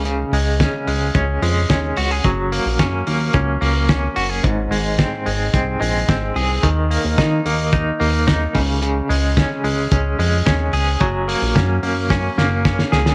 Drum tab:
HH |x-o-x-o-x-o-x-o-|x-o-x-o-x-o-x-o-|x-o-x-o-x-o-x-o-|x-o-x-o-x-o-x-o-|
SD |----o-------o---|----o-------o---|----o-------o---|----o-------o---|
BD |----o---o---o---|o---o---o---o---|o---o---o---o---|o---o---o---o-o-|

HH |x-o-x-o-x-o-x-o-|x-o-x-o---------|
SD |----o-------o---|----o---o-o-oooo|
BD |----o---o---o---|o---o---o---o---|